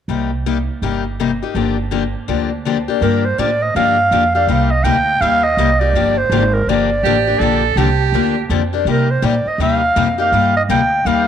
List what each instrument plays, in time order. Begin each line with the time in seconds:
0.08 upright bass C2, steel-string acoustic guitar C3 G3 A#3 D#4 G4
0.46 steel-string acoustic guitar C3 G3 A#3 D#4 G4
0.82 upright bass G1, steel-string acoustic guitar C3 G3 A#3 D#4 G4
1.20 steel-string acoustic guitar C3 G3 A#3 D#4 G4
1.42 steel-string acoustic guitar A#3 D#4 G4
1.55 upright bass G1, steel-string acoustic guitar D3 F3 A#3 D4 G4
1.91 steel-string acoustic guitar D3 F3 A#3 D4 G4
2.28 upright bass D2, steel-string acoustic guitar D3 F3 A#3 D4 G4
2.65 steel-string acoustic guitar D3 F3 A#3 D4 G4
2.88 steel-string acoustic guitar A#3 D4 G4
3.01 upright bass G2, steel-string acoustic guitar D3 F3 A#3 D4 G4, clarinet A#4
3.25 clarinet C5
3.38 upright bass A2, steel-string acoustic guitar D3 F3 A#3 D4 G4, clarinet D5
3.62 clarinet D#5
3.75 upright bass G2, steel-string acoustic guitar D3 F3 A#3 D4 G4, clarinet F5
4.11 upright bass F2, steel-string acoustic guitar D3 F3 A#3 D4 G4
4.35 steel-string acoustic guitar A#3 D4 G4, clarinet F5
4.47 upright bass C2, steel-string acoustic guitar C3 G3 A#3 D#4 G4
4.71 clarinet D#5
4.84 upright bass D2, steel-string acoustic guitar C3 G3 A#3 D#4 G4, clarinet G5
5.21 upright bass D#2, steel-string acoustic guitar C3 G3 A#3 D#4 G4, clarinet F5
5.43 clarinet D#5
5.57 upright bass C2, steel-string acoustic guitar C3 G3 A#3 D#4 G4
5.80 steel-string acoustic guitar A#3 D#4 G4, clarinet D5
5.93 upright bass G1, steel-string acoustic guitar D3 F3 A#3 D4 G4
6.17 clarinet C5
6.30 upright bass G#1, steel-string acoustic guitar D3 F3 A#3 D4 G4
6.53 clarinet A#4
6.67 upright bass G1, steel-string acoustic guitar D3 F3 A#3 D4 G4, clarinet D5
7.03 upright bass A1, steel-string acoustic guitar D3 F3 A#3 D4 G4, soprano saxophone G4
7.27 steel-string acoustic guitar A#3 D4 G4
7.39 upright bass A#1, steel-string acoustic guitar D3 F3 A#3 D4 G4, soprano saxophone A4
7.76 upright bass C2, steel-string acoustic guitar D3 F3 A#3 D4 G4, soprano saxophone G4
8.12 upright bass D2, steel-string acoustic guitar D3 F3 A#3 D4 G4
8.49 upright bass F2, steel-string acoustic guitar D3 F3 A#3 D4 G4
8.73 steel-string acoustic guitar A#3 D4 G4
8.85 upright bass C3, steel-string acoustic guitar C3 G3 A#3 D#4 G4, clarinet A#4
9.11 clarinet C5
9.22 upright bass A#2, steel-string acoustic guitar C3 G3 A#3 D#4 G4, clarinet D5
9.46 clarinet D#5, muted upright bass stroke
9.58 upright bass D#2, steel-string acoustic guitar C3 G3 A#3 D#4 G4
9.62 clarinet F5
9.96 upright bass F2, steel-string acoustic guitar C3 G3 A#3 D#4 G4
10.18 steel-string acoustic guitar A#3 D#4 G4, clarinet F5
10.32 upright bass G2, steel-string acoustic guitar C3 G3 A#3 D#4 G4
10.57 clarinet D#5
10.69 upright bass D2, steel-string acoustic guitar C3 G3 A#3 D#4 G4, clarinet G5
11.05 upright bass D#2, steel-string acoustic guitar C3 G3 A#3 D#4 G4, clarinet F5